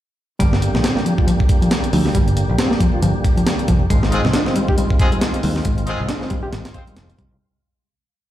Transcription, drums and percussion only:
0.40 kick loud
0.40 closed hi-hat medium
0.53 snare medium
0.62 closed hi-hat medium
0.75 snare medium
0.84 snare loud
0.84 closed hi-hat medium
0.97 snare soft
1.06 closed hi-hat medium
1.18 kick loud
1.28 closed hi-hat medium
1.40 kick loud
1.49 kick loud
1.49 closed hi-hat medium
1.62 closed hi-hat soft
1.71 snare loud
1.71 closed hi-hat medium
1.84 closed hi-hat soft
1.93 open hi-hat medium
2.06 snare soft
2.15 kick loud
2.15 closed hi-hat medium
2.28 closed hi-hat soft
2.37 closed hi-hat medium
2.58 snare loud
2.58 closed hi-hat medium
2.71 snare soft
2.80 kick loud
2.80 closed hi-hat medium
3.02 closed hi-hat medium
3.24 kick loud
3.24 closed hi-hat medium
3.38 closed hi-hat soft
3.47 snare loud
3.47 closed hi-hat medium
3.59 closed hi-hat soft
3.68 kick loud
3.68 closed hi-hat medium
3.90 kick loud
3.90 closed hi-hat medium
4.03 snare medium
4.12 closed hi-hat medium
4.25 snare medium
4.34 snare loud
4.34 closed hi-hat loud
4.46 snare soft
4.56 closed hi-hat medium
4.68 kick medium
4.78 closed hi-hat medium
4.90 kick loud
4.99 kick loud
4.99 closed hi-hat medium
5.12 closed hi-hat soft
5.21 snare loud
5.21 closed hi-hat medium
5.34 closed hi-hat soft
5.43 open hi-hat medium
5.56 snare soft
5.65 kick loud
5.65 closed hi-hat medium
5.78 closed hi-hat soft
5.87 closed hi-hat medium
6.09 snare loud
6.09 closed hi-hat loud
6.21 snare soft
6.30 kick loud
6.30 closed hi-hat medium
6.53 snare loud
6.53 closed hi-hat medium
6.65 snare loud
6.65 closed hi-hat medium
6.74 kick loud
6.74 closed hi-hat medium
6.87 closed hi-hat soft
6.97 snare loud
6.97 closed hi-hat loud
7.10 closed hi-hat soft
7.19 kick loud
7.19 closed hi-hat medium

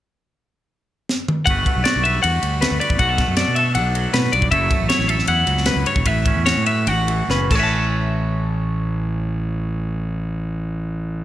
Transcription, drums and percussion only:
1.09 snare medium
1.28 mid tom medium
1.47 kick loud
1.47 ride medium
1.66 kick medium
1.66 ride medium
1.85 snare medium
1.85 ride medium
2.05 ride medium
2.24 ride medium
2.43 ride medium
2.62 snare loud
2.62 ride medium
2.81 ride medium
2.90 kick medium
2.99 kick medium
2.99 ride medium
3.18 kick medium
3.18 snare soft
3.18 ride medium
3.37 snare medium
3.37 ride medium
3.56 ride medium
3.75 ride medium
3.95 ride soft
4.14 snare medium
4.14 ride medium
4.24 snare soft
4.33 ride medium
4.42 kick medium
4.52 kick medium
4.52 ride medium
4.71 kick medium
4.71 ride medium
4.90 snare loud
4.90 ride medium
5.00 snare soft
5.09 ride medium
5.19 snare soft
5.27 ride medium
5.47 ride medium
5.57 snare soft
5.66 snare loud
5.66 ride medium
5.86 ride medium
5.96 kick medium
6.06 kick medium
6.06 ride medium
6.26 kick medium
6.26 ride medium
6.46 snare medium
6.46 ride medium
6.66 ride medium
6.87 ride medium
7.08 ride soft
7.30 snare soft
7.51 kick medium
7.51 crash medium

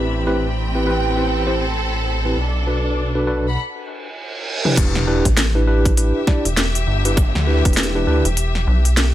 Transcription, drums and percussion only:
4.65 mid tom medium
4.65 high tom medium
4.77 kick loud
4.77 closed hi-hat medium
4.77 crash loud
4.95 snare medium
5.25 kick medium
5.25 closed hi-hat medium
5.37 snare loud
5.37 closed hi-hat medium
5.85 kick loud
5.85 closed hi-hat medium
5.97 closed hi-hat medium
6.27 kick loud
6.27 snare medium
6.45 closed hi-hat medium
6.57 snare loud
6.57 closed hi-hat medium
6.75 closed hi-hat soft
7.05 closed hi-hat medium
7.17 kick loud
7.17 closed hi-hat medium
7.35 snare medium
7.65 kick loud
7.65 closed hi-hat medium
7.73 snare loud
7.73 closed hi-hat soft
7.77 closed hi-hat medium
7.83 closed hi-hat soft
8.25 closed hi-hat medium
8.37 closed hi-hat medium
8.55 snare soft
8.85 closed hi-hat medium
8.97 snare loud
8.97 closed hi-hat medium

